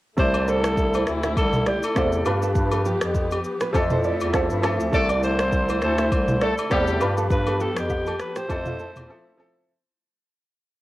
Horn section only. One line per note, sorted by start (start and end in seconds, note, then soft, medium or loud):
4.93 5.06 A3 loud
4.93 5.06 A4 loud
5.39 5.63 C4 medium
5.39 5.63 C5 medium
5.82 6.06 A3 medium
5.82 6.06 A4 medium
6.42 6.55 A3 medium
6.42 6.55 A4 loud
6.71 7.15 G3 medium
6.71 7.15 G4 loud